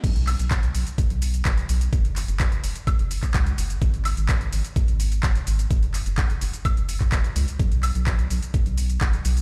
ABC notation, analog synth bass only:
X:1
M:4/4
L:1/16
Q:1/4=127
K:Blyd
V:1 name="Analog synth bass" clef=bass
B,,,3 B,,,3 B,,, z2 B,,,3 F,,,2 B,,,2 | F,,,3 F,,,3 F,,, z2 F,,,3 C,,2 F,,,2 | G,,,3 G,,,3 G,,, z2 G,,,3 F,,,2 G,,,2 | F,,,3 F,,,3 F,,, z2 F,,,3 F,,, z C,, z |
B,,,3 B,,,3 B,,, z2 B,,,3 F,,,2 B,,,2 |]